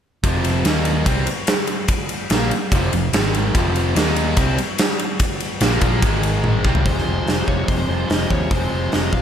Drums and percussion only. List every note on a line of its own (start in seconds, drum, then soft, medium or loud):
0.24 kick loud
0.24 ride medium
0.44 ride medium
0.65 snare loud
0.65 ride medium
0.85 ride medium
1.06 kick loud
1.06 ride medium
1.27 ride medium
1.47 snare loud
1.47 ride medium
1.67 ride medium
1.88 kick loud
1.88 ride medium
2.09 ride medium
2.30 snare loud
2.30 ride medium
2.51 ride medium
2.72 kick loud
2.72 ride medium
2.93 ride medium
3.13 snare loud
3.13 ride medium
3.34 ride medium
3.55 kick loud
3.55 ride medium
3.76 ride medium
3.96 snare loud
3.96 ride medium
4.16 ride medium
4.37 kick loud
4.37 ride loud
4.58 ride medium
4.78 snare loud
4.78 ride loud
4.99 ride medium
5.20 kick loud
5.20 ride medium
5.40 ride medium
5.61 snare loud
5.61 ride medium
5.81 kick loud
5.81 ride medium
6.02 kick loud
6.02 ride medium
6.23 ride medium
6.44 high tom medium
6.65 kick medium
6.75 floor tom medium
6.86 kick loud
6.86 open hi-hat soft
6.98 snare soft
7.27 snare medium
7.27 open hi-hat soft
7.48 kick medium
7.68 kick medium
7.68 open hi-hat soft
8.10 snare loud
8.10 open hi-hat soft
8.30 kick medium
8.51 kick loud
8.51 open hi-hat soft
8.92 snare medium
8.92 open hi-hat soft
9.13 kick medium